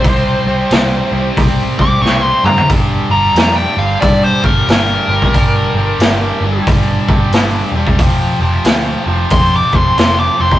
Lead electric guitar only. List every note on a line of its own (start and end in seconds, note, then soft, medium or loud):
0.00 1.32 C5 medium
1.81 2.02 D6 medium
2.02 2.22 C#6 medium
2.22 2.45 C6 medium
2.46 2.68 A#5 medium
3.11 3.55 A#5 medium
3.56 3.78 G5 medium
3.79 4.00 F5 medium
4.01 4.23 D5 medium
4.24 4.45 C5 medium
4.45 4.67 A#4 medium
4.70 6.64 A#4 medium
9.31 9.53 C6 medium
9.56 9.76 D6 medium
9.76 9.97 C6 medium
9.98 10.19 C6 medium
10.20 10.41 D6 medium
10.42 10.59 C6 medium